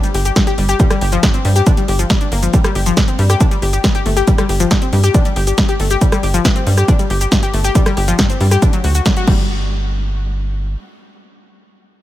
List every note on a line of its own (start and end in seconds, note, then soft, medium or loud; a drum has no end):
0.04 0.07 G3 medium
0.04 closed hi-hat medium
0.04 shaker soft
0.14 0.31 G1 loud
0.14 0.18 G4 medium
0.14 open hi-hat loud
0.25 0.31 G4 medium
0.25 closed hi-hat soft
0.25 shaker medium
0.36 0.40 G2 loud
0.36 kick loud
0.36 snare loud
0.36 closed hi-hat medium
0.36 shaker soft
0.47 0.50 G4 loud
0.47 closed hi-hat medium
0.47 shaker soft
0.58 0.75 G1 loud
0.58 0.64 G3 medium
0.58 open hi-hat loud
0.69 0.74 G4 loud
0.69 closed hi-hat medium
0.69 shaker medium
0.80 0.85 G3 medium
0.80 kick loud
0.80 closed hi-hat medium
0.80 shaker medium
0.90 0.96 G3 loud
0.90 cross-stick medium
0.90 closed hi-hat medium
0.90 shaker soft
1.01 1.18 G1 loud
1.01 1.05 G4 medium
1.01 open hi-hat loud
1.12 1.18 F3 loud
1.12 closed hi-hat soft
1.12 shaker medium
1.23 1.27 G2 loud
1.23 kick loud
1.23 snare loud
1.23 closed hi-hat medium
1.23 shaker medium
1.34 1.42 C4 medium
1.34 closed hi-hat soft
1.34 shaker soft
1.45 1.61 G2 loud
1.45 1.48 G3 medium
1.45 open hi-hat loud
1.56 1.61 G4 loud
1.56 closed hi-hat soft
1.56 shaker medium
1.66 1.72 D4 medium
1.66 kick loud
1.66 closed hi-hat medium
1.66 shaker medium
1.77 1.81 G3 medium
1.77 closed hi-hat medium
1.77 shaker soft
1.88 2.05 G1 loud
1.88 1.94 G4 medium
1.88 open hi-hat loud
1.99 2.05 F3 medium
1.99 closed hi-hat soft
1.99 shaker medium
2.10 2.16 G3 medium
2.10 kick loud
2.10 snare loud
2.10 closed hi-hat medium
2.10 shaker medium
2.21 2.27 D4 medium
2.21 closed hi-hat soft
2.21 shaker soft
2.32 2.48 G1 medium
2.32 2.40 A#3 medium
2.32 open hi-hat loud
2.43 2.51 F3 medium
2.43 closed hi-hat soft
2.43 shaker medium
2.53 2.59 G3 medium
2.53 kick loud
2.53 closed hi-hat medium
2.53 shaker medium
2.64 2.70 G3 loud
2.64 cross-stick medium
2.64 closed hi-hat medium
2.64 shaker soft
2.75 2.92 G1 loud
2.75 2.79 G4 medium
2.75 open hi-hat loud
2.86 2.92 F3 loud
2.86 closed hi-hat soft
2.86 shaker medium
2.97 3.00 G2 loud
2.97 kick loud
2.97 snare loud
2.97 closed hi-hat medium
2.97 shaker medium
3.08 3.16 C4 medium
3.08 closed hi-hat medium
3.08 shaker soft
3.19 3.35 G2 loud
3.19 3.22 G3 medium
3.19 open hi-hat loud
3.30 3.35 G4 loud
3.30 cross-stick medium
3.30 closed hi-hat soft
3.30 shaker medium
3.40 3.46 D4 medium
3.40 kick loud
3.40 closed hi-hat medium
3.40 shaker medium
3.51 3.55 G3 medium
3.51 closed hi-hat medium
3.51 shaker soft
3.62 3.79 G1 loud
3.62 3.66 G4 medium
3.62 open hi-hat loud
3.73 3.79 G4 medium
3.73 closed hi-hat medium
3.73 shaker medium
3.84 3.87 G2 loud
3.84 kick loud
3.84 snare loud
3.84 closed hi-hat medium
3.84 shaker medium
3.95 3.98 G4 loud
3.95 closed hi-hat medium
3.95 shaker soft
4.06 4.22 G1 loud
4.06 4.11 A3 medium
4.06 open hi-hat loud
4.17 4.22 G4 loud
4.17 closed hi-hat medium
4.17 shaker medium
4.27 4.33 G3 medium
4.27 kick loud
4.27 closed hi-hat medium
4.27 shaker medium
4.38 4.44 G3 loud
4.38 cross-stick medium
4.38 closed hi-hat medium
4.38 shaker soft
4.49 4.66 G1 loud
4.49 4.53 G4 medium
4.49 open hi-hat loud
4.60 4.66 F3 loud
4.60 closed hi-hat medium
4.60 shaker medium
4.71 4.74 G2 loud
4.71 kick loud
4.71 snare loud
4.71 closed hi-hat medium
4.71 shaker medium
4.82 4.90 C4 medium
4.82 closed hi-hat medium
4.82 shaker soft
4.93 5.09 G2 loud
4.93 4.96 G3 medium
4.93 open hi-hat loud
5.04 5.09 G4 loud
5.04 closed hi-hat medium
5.04 shaker medium
5.14 5.20 D4 medium
5.14 kick loud
5.14 closed hi-hat medium
5.14 shaker medium
5.25 5.29 G3 medium
5.25 closed hi-hat medium
5.25 shaker soft
5.36 5.53 G1 loud
5.36 5.40 G4 medium
5.36 open hi-hat loud
5.47 5.53 G4 medium
5.47 closed hi-hat medium
5.47 shaker medium
5.58 5.61 G2 loud
5.58 kick loud
5.58 snare loud
5.58 closed hi-hat medium
5.58 shaker medium
5.69 5.72 G4 loud
5.69 closed hi-hat medium
5.69 shaker soft
5.80 5.96 G1 loud
5.80 5.85 A3 medium
5.80 open hi-hat loud
5.90 5.96 G4 loud
5.90 closed hi-hat medium
5.90 shaker medium
6.01 6.07 G3 medium
6.01 kick loud
6.01 closed hi-hat medium
6.01 shaker medium
6.12 6.18 G3 loud
6.12 cross-stick medium
6.12 closed hi-hat medium
6.12 shaker soft
6.23 6.40 G1 loud
6.23 6.27 G4 medium
6.23 open hi-hat loud
6.34 6.40 F3 loud
6.34 closed hi-hat medium
6.34 shaker medium
6.45 6.48 G2 loud
6.45 kick loud
6.45 snare loud
6.45 closed hi-hat medium
6.45 shaker medium
6.56 6.64 C4 medium
6.56 closed hi-hat medium
6.56 shaker soft
6.67 6.83 G2 loud
6.67 6.70 G3 medium
6.67 open hi-hat loud
6.77 6.83 G4 loud
6.77 cross-stick medium
6.77 closed hi-hat medium
6.77 shaker medium
6.88 6.94 D4 medium
6.88 kick loud
6.88 closed hi-hat medium
6.88 shaker medium
6.99 7.03 G3 medium
6.99 closed hi-hat medium
6.99 shaker soft
7.10 7.27 G1 loud
7.10 7.13 G4 medium
7.10 open hi-hat loud
7.21 7.27 G4 medium
7.21 closed hi-hat medium
7.21 shaker medium
7.32 7.35 G2 loud
7.32 kick loud
7.32 snare loud
7.32 closed hi-hat medium
7.32 shaker medium
7.43 7.46 G4 loud
7.43 closed hi-hat medium
7.43 shaker soft
7.53 7.70 G1 loud
7.53 7.59 A3 medium
7.53 open hi-hat loud
7.64 7.70 G4 loud
7.64 closed hi-hat medium
7.64 shaker medium
7.75 7.81 G3 medium
7.75 kick loud
7.75 closed hi-hat medium
7.75 shaker medium
7.86 7.92 G3 loud
7.86 cross-stick medium
7.86 closed hi-hat medium
7.86 shaker soft
7.97 8.14 G1 loud
7.97 8.00 G4 medium
7.97 open hi-hat loud
8.08 8.14 F3 loud
8.08 closed hi-hat medium
8.08 shaker medium
8.19 8.22 G2 loud
8.19 kick loud
8.19 snare loud
8.19 closed hi-hat medium
8.19 shaker medium
8.30 8.38 C4 medium
8.30 closed hi-hat medium
8.30 shaker soft
8.40 8.57 G2 loud
8.40 8.44 G3 medium
8.40 open hi-hat loud
8.51 8.57 G4 loud
8.51 cross-stick medium
8.51 closed hi-hat medium
8.51 shaker medium
8.62 8.68 D4 medium
8.62 kick loud
8.62 closed hi-hat medium
8.62 shaker medium
8.73 8.77 F#3 medium
8.73 closed hi-hat medium
8.73 shaker soft
8.84 9.01 D2 medium
8.84 8.87 F#4 medium
8.84 open hi-hat loud
8.95 9.01 F#4 medium
8.95 closed hi-hat medium
8.95 shaker medium
9.06 9.09 F#2 loud
9.06 kick loud
9.06 snare loud
9.06 closed hi-hat medium
9.06 shaker medium
9.17 9.20 F#4 loud
9.17 closed hi-hat medium
9.17 shaker soft
9.27 10.76 G1 loud
9.27 9.68 G3 medium
9.27 kick loud
9.27 crash medium